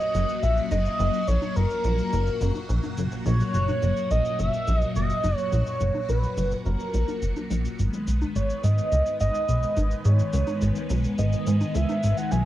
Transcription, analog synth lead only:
0, 0, Header, 1, 2, 480
1, 0, Start_track
1, 0, Tempo, 566038
1, 844, Time_signature, 4, 2, 24, 8
1, 10558, End_track
2, 0, Start_track
2, 0, Title_t, "Analog synth lead"
2, 0, Program_c, 0, 81
2, 0, Note_on_c, 0, 75, 106
2, 363, Note_on_c, 0, 76, 108
2, 376, Note_off_c, 0, 75, 0
2, 599, Note_off_c, 0, 76, 0
2, 604, Note_on_c, 0, 75, 111
2, 1082, Note_on_c, 0, 73, 102
2, 1095, Note_off_c, 0, 75, 0
2, 1324, Note_on_c, 0, 70, 93
2, 1336, Note_off_c, 0, 73, 0
2, 2524, Note_off_c, 0, 70, 0
2, 2765, Note_on_c, 0, 73, 110
2, 3487, Note_on_c, 0, 75, 101
2, 3499, Note_off_c, 0, 73, 0
2, 3720, Note_off_c, 0, 75, 0
2, 3725, Note_on_c, 0, 76, 115
2, 4048, Note_off_c, 0, 76, 0
2, 4048, Note_on_c, 0, 75, 115
2, 4171, Note_off_c, 0, 75, 0
2, 4206, Note_on_c, 0, 75, 108
2, 4553, Note_off_c, 0, 75, 0
2, 4553, Note_on_c, 0, 73, 108
2, 4686, Note_off_c, 0, 73, 0
2, 4686, Note_on_c, 0, 73, 105
2, 5162, Note_off_c, 0, 73, 0
2, 5167, Note_on_c, 0, 71, 98
2, 5612, Note_off_c, 0, 71, 0
2, 5645, Note_on_c, 0, 70, 86
2, 6331, Note_off_c, 0, 70, 0
2, 7085, Note_on_c, 0, 73, 102
2, 7308, Note_off_c, 0, 73, 0
2, 7325, Note_on_c, 0, 75, 117
2, 7771, Note_off_c, 0, 75, 0
2, 7806, Note_on_c, 0, 75, 119
2, 8527, Note_on_c, 0, 73, 100
2, 8539, Note_off_c, 0, 75, 0
2, 9245, Note_off_c, 0, 73, 0
2, 9485, Note_on_c, 0, 75, 101
2, 9963, Note_on_c, 0, 76, 101
2, 9976, Note_off_c, 0, 75, 0
2, 10323, Note_on_c, 0, 78, 97
2, 10335, Note_off_c, 0, 76, 0
2, 10442, Note_on_c, 0, 80, 116
2, 10455, Note_off_c, 0, 78, 0
2, 10558, Note_off_c, 0, 80, 0
2, 10558, End_track
0, 0, End_of_file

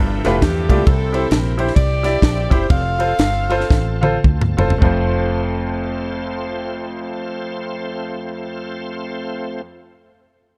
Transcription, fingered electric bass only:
0, 0, Header, 1, 2, 480
1, 0, Start_track
1, 0, Key_signature, -1, "major"
1, 0, Tempo, 448430
1, 931, Time_signature, 4, 2, 24, 8
1, 2383, Tempo, 493827
1, 3823, Tempo, 556070
1, 4783, Tempo, 590551
1, 9462, End_track
2, 0, Start_track
2, 0, Title_t, "Fingered electric bass"
2, 0, Program_c, 0, 33
2, 0, Note_on_c, 0, 31, 105
2, 222, Note_off_c, 0, 31, 0
2, 270, Note_on_c, 0, 29, 89
2, 430, Note_off_c, 0, 29, 0
2, 453, Note_on_c, 0, 40, 103
2, 742, Note_on_c, 0, 37, 100
2, 758, Note_off_c, 0, 40, 0
2, 903, Note_off_c, 0, 37, 0
2, 928, Note_on_c, 0, 36, 113
2, 1334, Note_off_c, 0, 36, 0
2, 1406, Note_on_c, 0, 34, 97
2, 1816, Note_off_c, 0, 34, 0
2, 1889, Note_on_c, 0, 36, 99
2, 2309, Note_off_c, 0, 36, 0
2, 2377, Note_on_c, 0, 34, 115
2, 2614, Note_off_c, 0, 34, 0
2, 2660, Note_on_c, 0, 30, 91
2, 2818, Note_off_c, 0, 30, 0
2, 2844, Note_on_c, 0, 29, 114
2, 3251, Note_off_c, 0, 29, 0
2, 3319, Note_on_c, 0, 31, 90
2, 3745, Note_off_c, 0, 31, 0
2, 3821, Note_on_c, 0, 33, 90
2, 4218, Note_off_c, 0, 33, 0
2, 4287, Note_on_c, 0, 38, 92
2, 4536, Note_off_c, 0, 38, 0
2, 4576, Note_on_c, 0, 30, 101
2, 4749, Note_off_c, 0, 30, 0
2, 4781, Note_on_c, 0, 29, 103
2, 8686, Note_off_c, 0, 29, 0
2, 9462, End_track
0, 0, End_of_file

